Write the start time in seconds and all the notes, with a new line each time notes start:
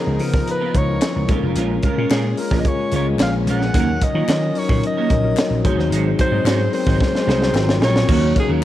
Already playing: C#3 F3 B3 D#4 F4 G#4 A#4
0.06 C#2, muted clean electric guitar stroke
0.19 C#3 F3 B3 D#4 A#4, open hi-hat
0.34 muted clean electric guitar stroke, kick, snare
0.47 B4, muted clean electric guitar stroke, closed hi-hat
0.60 B3 D#4 F4 A#4
0.74 C#2 F3 B3 D#4 C#5, muted clean electric guitar stroke, kick, closed hi-hat
0.88 F3 B3 D#4 E4, muted clean electric guitar stroke
0.96 F4
1.01 snare, clap, closed hi-hat
1.15 C#2, muted clean electric guitar stroke
1.28 A#1 G#3 A#3 C#4 F4 A4 A#4, kick, closed hi-hat
1.36 A#4
1.43 F1 G#3 C#4 F4 A#4
1.56 A#1 G#3 C#4 F4 A#4, closed hi-hat
1.83 G#3 C#4 F4 A#4, kick, closed hi-hat
1.97 A#2 G#3 C#4 F4 A#4 C#5
2.10 A#2 G#3 C#4 F4 G#4 A#4, snare, clap, closed hi-hat
2.25 muted clean electric guitar stroke
2.37 G#3 C#4 F4 A#4, muted clean electric guitar stroke, open hi-hat
2.51 A#1 G#3 C#4 F4 A#4, kick, snare
2.60 D#5
2.65 C#5, muted clean electric guitar stroke, kick, closed hi-hat
2.80 muted clean electric guitar stroke
2.91 C#2 G#3 C#4 F4 G#4 A#4, closed hi-hat
2.96 C#5
3.06 G#3 C#4 F4 B4, muted clean electric guitar stroke
3.14 C#5
3.19 A#1 F5, snare, clap, closed hi-hat
3.34 muted clean electric guitar stroke
3.46 A#1 G#3 C#4 F4 A#4, closed hi-hat
3.51 F#5
3.61 muted clean electric guitar stroke, snare
3.73 D#2 D#3 F#3 A#3 C#4 D#4 F#4 A#4, kick, closed hi-hat
3.89 muted clean electric guitar stroke
4.01 D#5, muted clean electric guitar stroke, kick, closed hi-hat
4.14 D#3 F#3 A#3 C#4 D#4 F4 F#4 A#4
4.28 D#3, muted clean electric guitar stroke, snare, clap, closed hi-hat
4.43 muted clean electric guitar stroke
4.55 F#3 C#4 D#4 A#4, open hi-hat
4.59 C#5
4.69 A#2, muted clean electric guitar stroke, kick
4.84 D#5, muted clean electric guitar stroke, closed hi-hat
4.97 A#3 C#4 F#4 A#4
5.09 A#1 F#3 C#4 D#4 A#4, muted clean electric guitar stroke, kick, closed hi-hat
5.24 F#3 C#4 D#4 A#4, muted clean electric guitar stroke
5.37 muted clean electric guitar stroke, snare, clap, closed hi-hat
5.50 A#1, muted clean electric guitar stroke
5.63 G#1 F#3 G#3 B3 C4 D#4 F#4 G#4 C5, kick, closed hi-hat
5.71 C4
5.77 D#2 G#3 D#4 F#4 C5, snare
5.90 G#1 G#3 D#4 F#4 C5, closed hi-hat
6.19 G#3 D#4 F#4 C5, kick, closed hi-hat
6.31 G#2 F#3 G#3 C4 D#4 F#4 G#4 D#5
6.44 G#2 G#3 D#4 F#4 C5, snare, clap, closed hi-hat
6.60 muted clean electric guitar stroke
6.72 F#3 B3 D#4 A#4 C5, muted clean electric guitar stroke, open hi-hat
6.79 C4
6.87 G#1 G#3 D#4 F#4 C5, kick, snare
7.01 muted clean electric guitar stroke, kick, snare
7.14 muted clean electric guitar stroke, snare
7.26 C2 F#3 G#3 C4 D#4 F#4 G#4 C5, snare
7.40 F#3 C4 D#4 G#4, muted clean electric guitar stroke, snare
7.53 G#1 F#3 C4 F4 A#4, snare, clap
7.68 muted clean electric guitar stroke, snare
7.81 A#1 F#3 C4 F4 A#4 C#5, snare
7.96 muted clean electric guitar stroke, snare
8.07 D#2 D#3 F#3 A#3 C#4 D#4 F#4 A#4, kick, crash
8.35 F#3 A#3 C#4 D#4 A#4, muted clean electric guitar stroke, kick, closed hi-hat
8.39 G#4
8.48 D#2 F#3 A#3 C#4 D#4 F#4 A#4